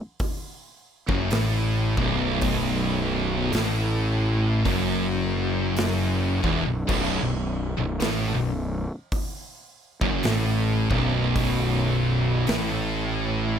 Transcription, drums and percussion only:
0.20 kick loud
0.20 open hi-hat medium
1.09 kick loud
1.31 snare loud
1.31 open hi-hat medium
1.97 kick loud
2.41 kick loud
2.41 open hi-hat medium
3.53 snare loud
3.53 open hi-hat medium
4.65 kick medium
4.65 open hi-hat medium
5.76 snare loud
5.76 open hi-hat medium
6.44 kick loud
6.89 kick loud
6.89 crash loud
8.00 snare loud
8.00 open hi-hat medium
9.12 kick loud
9.12 open hi-hat medium
10.01 kick loud
10.23 snare loud
10.23 open hi-hat medium
10.91 kick loud
11.36 kick loud
11.36 open hi-hat medium
12.47 snare loud
12.47 open hi-hat medium

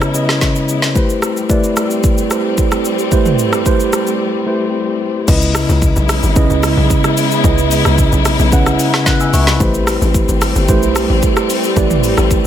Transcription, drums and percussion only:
0.02 cross-stick medium
0.02 shaker soft
0.15 shaker loud
0.29 cross-stick medium
0.29 snare medium
0.41 kick medium
0.41 snare medium
0.41 shaker medium
0.55 shaker soft
0.69 shaker medium
0.82 snare medium
0.82 shaker medium
0.96 kick loud
0.96 shaker medium
1.09 shaker soft
1.22 cross-stick loud
1.22 shaker medium
1.37 shaker medium
1.50 kick medium
1.50 shaker medium
1.64 shaker medium
1.77 cross-stick medium
1.77 shaker medium
1.91 shaker medium
2.04 kick loud
2.04 shaker medium
2.18 shaker soft
2.31 cross-stick loud
2.31 shaker medium
2.58 kick medium
2.58 shaker medium
2.72 cross-stick medium
2.72 shaker soft
2.85 shaker medium
2.99 shaker soft
3.12 kick loud
3.12 shaker medium
3.26 mid tom medium
3.26 shaker medium
3.39 shaker medium
3.53 cross-stick medium
3.53 shaker soft
3.66 kick medium
3.66 shaker medium
3.80 shaker medium
3.93 cross-stick medium
3.93 shaker medium
4.07 shaker medium
5.28 kick loud
5.28 crash loud
5.28 shaker medium
5.42 shaker medium
5.55 cross-stick loud
5.55 open hi-hat medium
5.55 shaker medium
5.69 shaker soft
5.82 kick loud
5.82 shaker medium
5.96 shaker medium
6.09 cross-stick medium
6.09 open hi-hat soft
6.09 shaker medium
6.23 shaker medium
6.36 kick loud
6.36 shaker medium
6.50 shaker medium
6.63 cross-stick loud
6.63 open hi-hat medium
6.63 shaker loud
6.90 kick medium
6.90 shaker medium
7.04 cross-stick medium
7.04 shaker medium
7.17 open hi-hat medium
7.17 shaker medium
7.31 shaker medium
7.44 kick loud
7.44 shaker medium
7.58 shaker medium
7.71 open hi-hat medium
7.71 shaker medium
7.85 cross-stick medium
7.85 shaker medium
7.98 kick loud
7.98 shaker medium
8.12 shaker medium
8.25 cross-stick medium
8.25 open hi-hat soft
8.25 shaker medium
8.39 shaker medium
8.52 kick loud
8.52 shaker medium
8.66 cross-stick medium
8.66 shaker medium
8.79 open hi-hat medium
8.79 shaker loud
8.94 cross-stick loud
8.94 snare medium
9.06 kick medium
9.06 snare medium
9.06 shaker medium
9.20 shaker soft
9.34 open hi-hat soft
9.34 shaker medium
9.47 snare medium
9.47 shaker medium
9.60 kick loud
9.60 shaker medium
9.74 shaker medium
9.87 cross-stick loud
9.87 open hi-hat medium
9.87 shaker medium
10.02 shaker medium
10.14 kick medium
10.14 shaker medium
10.29 shaker medium
10.42 cross-stick medium
10.42 open hi-hat medium
10.42 shaker medium
10.56 shaker medium
10.69 kick loud
10.69 shaker medium
10.83 shaker medium
10.96 cross-stick loud
10.96 open hi-hat medium
10.96 shaker loud
11.23 kick medium
11.23 shaker medium
11.36 cross-stick medium
11.36 shaker medium
11.50 open hi-hat medium
11.50 shaker medium
11.64 shaker medium
11.77 kick loud
11.77 shaker medium
11.90 mid tom medium
11.90 shaker medium
12.04 open hi-hat medium
12.04 shaker medium
12.18 cross-stick medium
12.18 shaker medium
12.31 kick loud
12.31 shaker medium

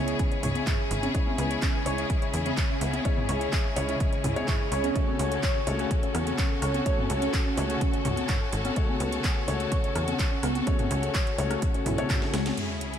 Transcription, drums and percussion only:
0.08 closed hi-hat medium
0.19 kick loud
0.19 closed hi-hat medium
0.32 closed hi-hat soft
0.43 mid tom medium
0.43 open hi-hat loud
0.55 closed hi-hat soft
0.55 high conga medium
0.67 kick loud
0.67 clap loud
0.67 closed hi-hat medium
0.67 mid tom medium
0.91 open hi-hat loud
1.03 closed hi-hat medium
1.03 high conga medium
1.15 kick loud
1.15 closed hi-hat medium
1.27 high conga medium
1.38 open hi-hat loud
1.51 closed hi-hat medium
1.62 kick loud
1.62 clap loud
1.62 closed hi-hat medium
1.86 open hi-hat loud
1.98 closed hi-hat soft
2.10 kick loud
2.10 closed hi-hat medium
2.22 closed hi-hat soft
2.34 open hi-hat loud
2.46 closed hi-hat soft
2.46 high conga medium
2.57 kick loud
2.57 clap loud
2.57 closed hi-hat medium
2.81 open hi-hat loud
2.93 closed hi-hat medium
2.93 high conga medium
3.05 kick loud
3.05 closed hi-hat medium
3.17 mid tom medium
3.17 high conga medium
3.29 open hi-hat loud
3.41 closed hi-hat soft
3.53 kick loud
3.53 clap loud
3.53 closed hi-hat medium
3.76 open hi-hat loud
3.89 closed hi-hat soft
4.00 kick loud
4.00 closed hi-hat medium
4.13 closed hi-hat soft
4.24 mid tom medium
4.24 open hi-hat loud
4.36 closed hi-hat soft
4.36 high conga medium
4.48 kick loud
4.48 clap loud
4.48 closed hi-hat medium
4.48 mid tom medium
4.72 open hi-hat loud
4.84 closed hi-hat soft
4.84 high conga medium
4.96 kick loud
4.96 closed hi-hat medium
5.08 high conga medium
5.19 open hi-hat loud
5.32 closed hi-hat soft
5.43 kick loud
5.43 clap loud
5.43 closed hi-hat medium
5.67 open hi-hat loud
5.79 closed hi-hat soft
5.91 kick loud
5.91 closed hi-hat medium
6.03 closed hi-hat soft
6.15 cross-stick medium
6.15 open hi-hat loud
6.27 closed hi-hat medium
6.27 high conga medium
6.38 kick loud
6.38 clap loud
6.38 closed hi-hat medium
6.62 cross-stick medium
6.62 open hi-hat loud
6.74 closed hi-hat soft
6.74 high conga medium
6.86 kick loud
6.86 closed hi-hat medium
6.98 mid tom medium
6.98 high conga medium
7.10 open hi-hat loud
7.22 closed hi-hat medium
7.34 kick loud
7.34 clap loud
7.34 closed hi-hat medium
7.57 open hi-hat loud
7.70 closed hi-hat medium
7.81 kick loud
7.81 closed hi-hat medium
7.93 closed hi-hat soft
8.05 mid tom medium
8.05 open hi-hat medium
8.17 closed hi-hat medium
8.17 high conga medium
8.29 kick loud
8.29 cross-stick medium
8.29 clap loud
8.29 closed hi-hat medium
8.29 mid tom medium
8.53 open hi-hat loud
8.65 closed hi-hat medium
8.65 high conga medium
8.76 kick loud
8.76 closed hi-hat medium
8.89 high conga medium
9.00 open hi-hat loud
9.12 closed hi-hat medium
9.24 kick loud
9.24 clap loud
9.24 closed hi-hat medium
9.48 open hi-hat loud
9.60 closed hi-hat medium
9.72 kick loud
9.72 closed hi-hat medium
9.84 closed hi-hat soft
9.95 cross-stick medium
9.95 open hi-hat medium
10.08 closed hi-hat medium
10.08 high conga medium
10.19 kick loud
10.19 clap loud
10.19 closed hi-hat medium
10.43 cross-stick medium
10.43 open hi-hat loud
10.55 closed hi-hat medium
10.55 high conga medium
10.67 kick loud
10.67 closed hi-hat medium
10.79 closed hi-hat soft
10.79 mid tom medium
10.79 high conga medium
10.91 open hi-hat loud
11.03 closed hi-hat medium
11.15 kick loud
11.15 clap loud
11.15 closed hi-hat medium
11.27 closed hi-hat soft
11.38 open hi-hat loud
11.51 cross-stick medium
11.51 closed hi-hat medium
11.62 kick loud
11.62 closed hi-hat medium
11.74 closed hi-hat soft
11.86 mid tom medium
11.86 open hi-hat loud
11.98 closed hi-hat medium
11.98 high conga medium
12.10 kick loud
12.10 cross-stick medium
12.10 clap loud
12.10 closed hi-hat medium
12.10 mid tom medium
12.22 snare soft
12.34 snare medium
12.34 open hi-hat loud
12.46 snare medium
12.46 closed hi-hat medium
12.46 high conga loud
12.57 closed hi-hat medium
12.57 crash medium
12.81 closed hi-hat medium
12.94 closed hi-hat soft

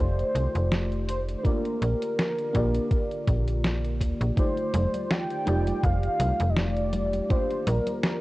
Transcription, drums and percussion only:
0.19 closed hi-hat soft
0.36 closed hi-hat medium
0.55 closed hi-hat medium
0.72 snare loud
0.72 closed hi-hat soft
0.92 closed hi-hat soft
1.09 closed hi-hat medium
1.29 closed hi-hat soft
1.45 kick loud
1.45 closed hi-hat soft
1.65 closed hi-hat soft
1.82 closed hi-hat medium
2.02 closed hi-hat medium
2.18 snare loud
2.18 closed hi-hat medium
2.38 closed hi-hat soft
2.54 kick medium
2.54 closed hi-hat medium
2.74 closed hi-hat medium
2.91 kick loud
2.91 closed hi-hat medium
3.11 closed hi-hat soft
3.28 kick loud
3.28 closed hi-hat medium
3.48 closed hi-hat medium
3.64 snare loud
3.64 closed hi-hat medium
3.84 closed hi-hat soft
4.01 kick medium
4.01 closed hi-hat medium
4.21 closed hi-hat medium
4.37 kick loud
4.37 closed hi-hat medium
4.37 high conga soft
4.57 closed hi-hat soft
4.74 closed hi-hat loud
4.74 high conga medium
4.94 closed hi-hat medium
4.94 high conga soft
5.11 snare loud
5.11 closed hi-hat medium
5.11 high conga soft
5.31 closed hi-hat soft
5.47 closed hi-hat medium
5.47 high conga medium
5.67 closed hi-hat medium
5.67 high conga soft
5.84 kick loud
5.84 closed hi-hat medium
5.84 high conga soft
6.04 closed hi-hat soft
6.20 closed hi-hat loud
6.20 high conga medium
6.40 closed hi-hat medium
6.40 high conga soft
6.57 snare loud
6.57 closed hi-hat medium
6.57 high conga soft
6.77 closed hi-hat soft
6.93 closed hi-hat loud
6.93 high conga medium
7.13 closed hi-hat medium
7.13 high conga soft
7.30 kick loud
7.30 closed hi-hat medium
7.30 high conga soft
7.50 closed hi-hat soft
7.67 closed hi-hat loud
7.67 high conga medium
7.87 closed hi-hat medium
7.87 high conga soft
8.03 snare loud
8.03 closed hi-hat medium
8.03 high conga soft

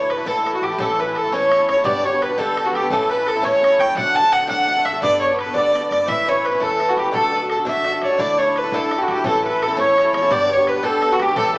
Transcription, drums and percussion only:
0.10 bodhran medium
0.20 bodhran soft
0.27 bodhran medium
0.47 bodhran medium
0.64 bodhran medium
0.80 bodhran medium
1.00 bodhran soft
1.16 bodhran medium
1.33 bodhran medium
1.52 bodhran medium
1.69 bodhran medium
1.86 bodhran medium
2.05 bodhran soft
2.22 bodhran medium
2.31 bodhran soft
2.39 bodhran medium
2.57 bodhran medium
2.75 bodhran medium
2.92 bodhran medium
3.10 bodhran soft
3.28 bodhran medium
3.37 bodhran soft
3.45 bodhran medium
3.64 bodhran medium
3.81 bodhran medium
3.98 bodhran loud
4.33 bodhran medium
4.42 bodhran soft
4.51 bodhran medium
4.86 bodhran medium
5.03 bodhran medium
5.22 bodhran soft
5.39 bodhran medium
5.48 bodhran soft
5.56 bodhran medium
5.75 bodhran medium
5.92 bodhran medium
6.10 bodhran medium
6.29 bodhran soft
6.46 bodhran medium
6.54 bodhran soft
6.61 bodhran medium
6.80 bodhran medium
6.98 bodhran medium
7.14 bodhran medium
7.34 bodhran soft
7.50 bodhran medium
7.58 bodhran soft
7.67 bodhran medium
7.85 bodhran medium
8.02 bodhran medium
8.19 bodhran medium
8.39 bodhran soft
8.56 bodhran medium
8.64 bodhran soft
8.72 bodhran medium
8.91 bodhran medium
9.08 bodhran medium
9.25 bodhran medium
9.46 bodhran soft
9.63 bodhran medium
9.71 bodhran soft
9.79 bodhran medium
9.98 bodhran medium
10.14 bodhran medium
10.31 bodhran medium
10.51 bodhran soft
10.67 bodhran medium
10.76 bodhran soft
10.84 bodhran medium
11.02 bodhran medium
11.20 bodhran medium
11.37 bodhran medium

